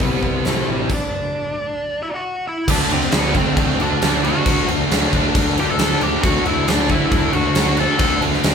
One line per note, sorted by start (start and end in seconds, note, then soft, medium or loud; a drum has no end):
0.00 0.21 C2 medium
0.00 0.23 C3 medium
0.00 0.42 C3 medium
0.00 0.89 C3 medium
0.00 0.23 E3 medium
0.00 0.44 G3 medium
0.00 0.89 G3 medium
0.00 0.43 B3 medium
0.00 0.44 C4 medium
0.00 0.90 C4 medium
0.00 0.43 E4 medium
0.00 kick loud
0.00 open hi-hat soft
0.22 0.43 C2 medium
0.22 0.67 E3 medium
0.22 kick medium
0.43 0.66 C2 medium
0.43 0.88 C3 medium
0.43 0.88 G3 medium
0.43 0.90 G3 medium
0.43 0.89 C4 medium
0.43 0.90 E4 medium
0.43 snare medium
0.43 open hi-hat soft
0.48 0.69 A3 medium
0.68 0.88 A1 medium
0.68 0.90 E3 medium
0.68 0.92 G3 medium
0.90 2.21 D4 medium
0.90 kick medium
0.90 crash medium
2.03 2.07 E4 medium
2.03 2.07 E5 medium
2.14 2.45 F#4 medium
2.14 2.47 F#5 medium
2.48 2.68 E4 medium
2.48 2.70 E5 medium
2.68 2.82 D2 loud
2.68 3.12 D3 loud
2.68 2.94 A3 loud
2.68 2.92 D4 loud
2.68 2.90 D4 medium
2.68 2.91 F#4 loud
2.68 2.92 D5 loud
2.68 kick loud
2.68 crash loud
2.68 crash medium
2.90 3.05 D2 medium
2.90 3.13 A3 medium
2.90 3.13 C4 medium
2.90 3.14 D4 medium
2.90 3.16 F#4 medium
2.90 3.15 C5 medium
2.90 crash medium
3.02 snare soft
3.12 3.40 D2 loud
3.12 3.38 D3 medium
3.12 3.37 A3 medium
3.12 3.36 D4 medium
3.12 snare loud
3.12 crash medium
3.16 3.36 B3 medium
3.16 3.34 F#4 medium
3.16 3.36 B4 medium
3.34 3.57 D3 medium
3.34 3.58 A3 loud
3.34 3.78 C4 medium
3.34 3.59 D4 medium
3.34 3.60 F#4 loud
3.34 3.78 C5 medium
3.34 kick medium
3.34 crash medium
3.57 3.71 D2 medium
3.57 3.83 D3 medium
3.57 3.82 A3 medium
3.57 3.81 D4 medium
3.57 kick loud
3.57 crash medium
3.61 3.80 F#4 medium
3.80 3.93 D2 loud
3.80 4.03 A3 medium
3.80 4.04 D4 medium
3.80 4.22 D4 medium
3.80 4.05 F#4 loud
3.80 4.26 D5 loud
3.80 crash medium
3.84 4.02 D3 medium
4.02 4.29 D2 loud
4.02 4.46 D3 medium
4.02 4.28 A3 medium
4.02 4.26 D4 medium
4.02 4.25 F#4 medium
4.02 snare loud
4.02 crash medium
4.24 4.49 D4 medium
4.24 4.66 F#4 medium
4.24 4.50 F#4 medium
4.24 4.65 F#5 medium
4.24 crash medium
4.28 4.48 A3 medium
4.46 4.60 D2 medium
4.46 4.91 D3 loud
4.46 4.72 A3 loud
4.46 4.70 D4 loud
4.46 kick loud
4.46 crash medium
4.50 4.68 F#4 loud
4.68 4.82 D2 medium
4.68 4.93 A3 medium
4.68 4.93 D4 medium
4.68 4.94 F#4 medium
4.68 crash medium
4.91 5.04 D2 loud
4.91 5.16 D3 medium
4.91 5.16 A3 medium
4.91 5.14 D4 medium
4.91 snare loud
4.91 crash medium
4.95 5.13 F#4 medium
5.13 5.27 D2 loud
5.13 5.36 D3 medium
5.13 5.37 A3 medium
5.13 5.38 D4 medium
5.13 5.39 F#4 loud
5.13 kick medium
5.13 crash medium
5.35 5.62 D2 loud
5.35 5.62 D3 medium
5.35 5.61 A3 medium
5.35 5.60 D4 medium
5.35 kick loud
5.35 crash medium
5.39 5.59 F#4 loud
5.57 5.82 A3 medium
5.57 5.82 D4 loud
5.57 5.83 F#4 loud
5.57 5.69 G4 medium
5.57 5.70 G5 medium
5.57 crash medium
5.62 5.80 D3 medium
5.70 6.01 A4 medium
5.70 6.01 A5 loud
5.79 5.93 D2 loud
5.79 6.25 D3 medium
5.79 6.05 A3 medium
5.79 6.04 D4 medium
5.79 snare loud
5.79 crash medium
5.84 6.02 F#4 loud
6.01 6.15 D2 medium
6.01 6.25 A3 medium
6.01 6.26 D4 medium
6.01 6.27 F#4 medium
6.01 6.23 G4 medium
6.01 6.22 G5 loud
6.01 crash medium
6.23 6.37 D2 medium
6.23 6.68 D3 loud
6.23 6.50 A3 loud
6.23 6.45 F#4 medium
6.23 6.44 F#5 loud
6.23 kick loud
6.23 crash medium
6.27 6.48 D4 loud
6.27 6.46 F#4 loud
6.44 6.58 D2 medium
6.44 6.68 E4 medium
6.44 6.71 F#4 medium
6.44 6.69 E5 medium
6.44 crash medium
6.49 6.70 A3 medium
6.49 6.71 D4 medium
6.67 6.95 D2 loud
6.67 6.93 D3 medium
6.67 6.91 A3 medium
6.67 6.90 D4 medium
6.67 6.91 D4 medium
6.67 6.89 D5 medium
6.67 snare loud
6.67 crash medium
6.72 6.89 F#4 medium
6.89 7.14 A3 medium
6.89 7.14 D4 medium
6.89 7.16 F#4 medium
6.89 7.33 E5 loud
6.89 kick medium
6.89 crash medium
6.93 7.12 D3 medium
6.93 7.33 E4 medium
7.12 7.26 D2 loud
7.12 7.37 D3 medium
7.12 7.37 A3 medium
7.12 7.35 D4 medium
7.12 kick loud
7.12 crash medium
7.17 7.33 F#4 loud
7.33 7.48 D2 loud
7.33 7.57 D4 loud
7.33 7.58 F#4 loud
7.33 7.76 F#4 medium
7.33 7.79 F#5 loud
7.33 crash medium
7.37 7.55 D3 medium
7.37 7.56 A3 medium
7.55 7.84 D2 loud
7.55 7.97 D3 medium
7.55 7.80 A3 medium
7.55 7.78 D4 medium
7.55 snare loud
7.55 crash medium
7.59 7.76 F#4 medium
7.77 7.99 A3 medium
7.77 8.00 D4 medium
7.77 8.00 F#4 medium
7.77 8.21 A4 medium
7.77 8.20 A5 medium
7.77 crash medium
7.98 8.13 D2 loud
7.98 8.42 D3 loud
7.98 8.25 A3 loud
7.98 8.23 D4 loud
7.98 8.21 F#4 loud
7.98 kick loud
7.98 crash medium
8.21 8.35 D2 medium
8.21 8.45 D4 medium
8.21 8.45 F#4 medium
8.21 crash medium
8.26 8.44 A3 medium
8.33 snare soft
8.44 8.55 D2 loud
8.44 8.55 D3 medium
8.44 8.55 A3 medium
8.44 8.55 D4 medium
8.44 8.55 F#4 medium
8.44 snare loud
8.44 crash medium